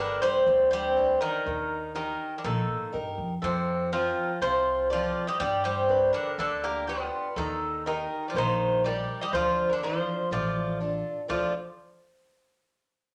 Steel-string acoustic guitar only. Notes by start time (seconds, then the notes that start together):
Already playing: D4
0.00 G4 B4
0.47 D3
0.97 D4 G4 B4
1.46 D#3
1.95 D#4 G4 A#4
2.44 A#3
2.92 D#4 G4 A#4
3.42 F3
3.92 C4 F4 C5
4.42 C3
4.90 C4 F4 A4
5.41 G3
5.89 D4 G4 B4
6.38 D3
6.88 D4 G4 B4
7.37 D#3
7.86 D#4 G4 A#4
8.35 A#3
8.85 D#4 G4 A#4
9.34 D3
9.82 D4 F4 A4
10.32 A3
10.80 D4 F4 A4
11.28 D3 A3 D4 F4 A4